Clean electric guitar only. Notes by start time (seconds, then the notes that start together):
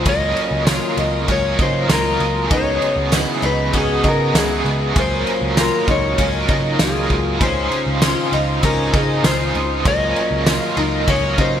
0.09 D#5
0.71 C#5
1.32 C#5
1.62 C5
1.94 A#4
2.54 C#5
3.20 B4
3.46 B4
3.77 G#4
4.08 A#4
4.38 G#4
4.99 C5
5.61 A#4
5.91 C#5
6.84 G#4
7.43 C5
8.65 A#4
8.96 G#4
9.26 C5
9.88 D#5
11.10 C#5
11.41 C5